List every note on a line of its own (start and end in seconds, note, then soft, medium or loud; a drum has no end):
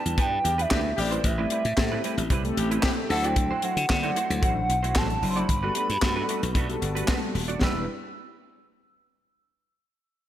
0.00 0.22 A5 loud
0.05 0.15 E2 medium
0.05 0.50 G3 medium
0.05 0.50 D4 medium
0.05 0.50 E4 medium
0.05 0.50 B4 medium
0.05 muted clean electric guitar stroke medium
0.05 closed hi-hat medium
0.17 0.38 G2 loud
0.17 0.34 B3 medium
0.17 0.32 D4 medium
0.17 0.31 G4 medium
0.17 0.30 B4 medium
0.17 0.63 G5 loud
0.17 kick loud
0.17 closed hi-hat medium
0.32 muted clean electric guitar stroke soft
0.44 0.65 E2 medium
0.44 0.56 D4 medium
0.44 0.56 E4 medium
0.44 0.56 G4 medium
0.44 muted clean electric guitar stroke soft
0.44 closed hi-hat medium
0.58 0.69 B3 medium
0.58 0.70 D4 medium
0.58 0.70 G4 medium
0.58 0.70 B4 medium
0.58 1.01 E5 medium
0.58 closed hi-hat medium
0.70 0.91 D2 loud
0.70 0.89 G3 medium
0.70 0.87 B3 medium
0.70 0.80 D4 medium
0.70 0.89 D4 medium
0.70 0.85 D4 loud
0.70 0.79 E4 loud
0.70 0.89 E4 medium
0.70 0.79 G4 loud
0.70 0.85 G4 medium
0.70 0.90 B4 medium
0.70 0.84 B4 loud
0.70 kick loud
0.70 snare loud
0.70 clap loud
0.85 muted clean electric guitar stroke soft
0.97 1.18 A1 loud
0.97 1.29 A3 medium
0.97 1.14 C4 loud
0.97 1.30 C4 medium
0.97 1.14 E4 medium
0.97 1.14 G4 loud
0.97 1.30 G4 medium
0.97 1.30 B4 medium
0.97 1.28 D5 medium
0.97 muted clean electric guitar stroke soft
0.97 open hi-hat medium
1.11 1.23 G3 medium
1.11 1.23 C4 medium
1.11 1.23 E4 medium
1.11 1.23 C5 medium
1.11 closed hi-hat soft
1.24 1.44 A1 loud
1.24 2.31 E5 loud
1.24 kick loud
1.24 closed hi-hat loud
1.38 1.49 G3 medium
1.38 1.65 A3 medium
1.38 1.65 C4 medium
1.38 1.50 C4 medium
1.38 1.51 E4 medium
1.38 1.65 G4 medium
1.38 1.51 B4 medium
1.38 1.65 D5 medium
1.50 1.64 G3 medium
1.50 1.64 C4 medium
1.50 1.64 E4 medium
1.50 1.64 B4 medium
1.50 closed hi-hat medium
1.65 1.74 A2 loud
1.65 muted clean electric guitar stroke medium
1.65 closed hi-hat medium
1.77 1.97 A2 loud
1.77 2.23 A3 medium
1.77 2.23 C4 medium
1.77 2.23 G4 medium
1.77 2.23 A4 loud
1.77 muted clean electric guitar stroke soft
1.77 kick loud
1.77 snare loud
1.77 clap medium
1.92 2.03 G3 medium
1.92 2.03 C4 medium
1.92 2.04 E4 medium
1.92 2.03 B4 medium
2.04 2.20 G3 medium
2.04 2.18 C4 medium
2.04 2.17 E4 loud
2.04 2.17 B4 loud
2.04 closed hi-hat medium
2.17 2.27 A1 medium
2.17 muted clean electric guitar stroke medium
2.17 closed hi-hat medium
2.30 2.50 C2 medium
2.30 2.47 G3 medium
2.30 2.45 C4 medium
2.30 2.44 E4 loud
2.30 2.44 B4 loud
2.30 kick loud
2.30 closed hi-hat loud
2.44 3.10 A3 loud
2.44 3.10 C4 medium
2.44 3.10 G4 loud
2.44 3.10 A4 loud
2.44 muted clean electric guitar stroke soft
2.44 closed hi-hat soft
2.57 2.77 A1 medium
2.57 2.69 C4 medium
2.57 2.69 E4 medium
2.57 2.69 G4 medium
2.57 muted clean electric guitar stroke soft
2.57 closed hi-hat medium
2.71 2.82 G3 medium
2.71 2.83 C4 medium
2.71 2.83 E4 medium
2.71 2.83 B4 medium
2.71 closed hi-hat medium
2.83 3.00 G3 medium
2.83 2.92 C4 loud
2.83 2.98 C4 medium
2.83 2.92 E4 medium
2.83 2.97 E4 loud
2.83 2.92 G4 loud
2.83 2.97 B4 medium
2.83 kick loud
2.83 snare loud
2.83 clap loud
2.98 muted clean electric guitar stroke soft
3.09 3.50 D2 loud
3.09 3.53 F#3 medium
3.09 3.53 D4 medium
3.09 3.53 E4 medium
3.09 3.27 E4 medium
3.09 3.27 F#4 medium
3.09 3.27 A4 loud
3.09 3.53 C5 medium
3.09 3.27 F#5 medium
3.09 muted clean electric guitar stroke soft
3.09 open hi-hat medium
3.24 3.36 A3 medium
3.24 3.36 E4 medium
3.24 3.36 F#4 medium
3.24 3.36 D5 medium
3.24 3.64 G5 medium
3.24 closed hi-hat soft
3.36 kick loud
3.36 closed hi-hat loud
3.51 3.62 A3 medium
3.51 3.62 E4 medium
3.51 3.63 F#4 medium
3.51 3.63 C5 medium
3.62 3.81 F#3 medium
3.62 3.76 A3 medium
3.62 3.81 D4 medium
3.62 3.82 E4 medium
3.62 3.77 E4 medium
3.62 3.82 F#4 medium
3.62 3.77 F#4 medium
3.62 3.76 C5 medium
3.62 4.39 F#5 medium
3.62 closed hi-hat medium
3.77 3.86 D3 loud
3.77 muted clean electric guitar stroke soft
3.77 closed hi-hat medium
3.89 4.10 D3 loud
3.89 4.16 F#3 medium
3.89 4.16 D4 medium
3.89 4.17 E4 medium
3.89 4.17 D5 medium
3.89 muted clean electric guitar stroke soft
3.89 kick loud
3.89 snare loud
3.89 clap medium
4.03 4.14 A3 medium
4.03 4.15 E4 medium
4.03 4.16 F#4 medium
4.03 4.15 C5 medium
4.03 closed hi-hat soft
4.15 4.32 A3 loud
4.15 4.30 E4 medium
4.15 4.29 F#4 loud
4.15 4.29 C5 loud
4.15 closed hi-hat medium
4.29 4.44 D2 medium
4.29 4.74 F#3 medium
4.29 4.74 D4 medium
4.29 4.75 E4 medium
4.29 4.75 C5 medium
4.29 muted clean electric guitar stroke medium
4.29 closed hi-hat medium
4.42 4.63 A1 loud
4.42 4.59 A3 medium
4.42 4.56 E4 medium
4.42 4.56 F#4 medium
4.42 4.55 C5 medium
4.42 4.99 F#5 loud
4.42 kick loud
4.42 closed hi-hat medium
4.56 muted clean electric guitar stroke soft
4.69 4.96 B1 medium
4.69 muted clean electric guitar stroke soft
4.69 closed hi-hat medium
4.83 4.94 A3 medium
4.83 4.95 E4 medium
4.83 4.95 F#4 medium
4.83 4.95 C5 medium
4.83 closed hi-hat soft
4.95 5.16 A1 loud
4.95 5.14 F#3 medium
4.95 5.12 A3 medium
4.95 5.14 D4 medium
4.95 5.14 E4 medium
4.95 5.09 E4 medium
4.95 5.09 F#4 loud
4.95 5.14 A4 medium
4.95 5.08 C5 loud
4.95 5.30 A5 loud
4.95 kick loud
4.95 snare loud
4.95 clap loud
5.10 muted clean electric guitar stroke soft
5.10 closed hi-hat soft
5.22 5.42 F#1 medium
5.22 5.49 F#3 medium
5.22 5.49 D4 medium
5.22 5.49 E4 medium
5.22 5.49 C5 medium
5.22 muted clean electric guitar stroke soft
5.22 open hi-hat medium
5.30 5.40 C6 medium
5.36 5.48 A3 medium
5.36 5.48 E4 medium
5.36 5.48 F#4 medium
5.36 5.48 D5 medium
5.36 7.09 B5 loud
5.36 closed hi-hat soft
5.49 5.69 G1 loud
5.49 kick loud
5.49 closed hi-hat loud
5.63 5.90 G3 medium
5.63 5.74 A3 medium
5.63 5.90 B3 medium
5.63 5.75 D4 medium
5.63 5.90 F#4 medium
5.63 5.75 F#4 medium
5.63 5.90 A4 medium
5.63 5.76 B4 medium
5.75 5.89 A3 medium
5.75 5.89 D4 medium
5.75 5.89 F#4 medium
5.75 5.88 B4 medium
5.75 closed hi-hat medium
5.89 5.99 G2 medium
5.89 muted clean electric guitar stroke soft
5.89 closed hi-hat medium
6.02 6.22 G2 loud
6.02 6.47 G3 loud
6.02 6.09 A3 medium
6.02 6.48 F#4 loud
6.02 6.48 A4 loud
6.02 muted clean electric guitar stroke soft
6.02 kick loud
6.02 snare loud
6.02 clap medium
6.08 6.51 B3 loud
6.16 6.27 A3 medium
6.16 6.28 D4 medium
6.16 6.28 F#4 medium
6.16 6.28 B4 medium
6.28 6.45 A3 medium
6.28 6.43 D4 medium
6.28 6.42 F#4 medium
6.28 6.42 B4 medium
6.28 closed hi-hat medium
6.43 6.52 B1 medium
6.43 muted clean electric guitar stroke soft
6.43 closed hi-hat medium
6.55 6.75 B1 loud
6.55 6.72 A3 medium
6.55 6.69 D4 medium
6.55 6.69 F#4 medium
6.55 6.68 B4 medium
6.55 kick loud
6.55 closed hi-hat medium
6.69 7.40 G3 loud
6.69 7.40 B3 loud
6.69 7.41 F#4 medium
6.69 7.41 A4 loud
6.69 muted clean electric guitar stroke soft
6.69 closed hi-hat soft
6.82 7.02 G1 medium
6.82 muted clean electric guitar stroke soft
6.82 closed hi-hat medium
6.95 7.06 A3 soft
6.95 7.07 D4 soft
6.95 7.08 F#4 medium
6.95 7.07 B4 medium
6.95 closed hi-hat medium
7.08 7.24 A3 medium
7.08 7.22 D4 medium
7.08 7.22 F#4 loud
7.08 7.21 B4 loud
7.08 kick loud
7.08 snare loud
7.08 clap loud
7.22 muted clean electric guitar stroke soft
7.35 7.55 D#1 medium
7.35 muted clean electric guitar stroke soft
7.35 open hi-hat medium
7.48 7.60 A3 medium
7.48 7.60 D4 medium
7.48 7.60 F#4 medium
7.48 7.60 D5 medium
7.48 closed hi-hat soft
7.61 7.86 E1 loud
7.61 7.86 G3 medium
7.61 7.78 B3 medium
7.61 7.86 D4 medium
7.61 7.78 D4 medium
7.61 7.86 E4 medium
7.61 7.78 G4 medium
7.61 7.86 B4 medium
7.61 7.78 B4 medium
7.61 7.86 E6 medium
7.61 kick loud
7.61 snare loud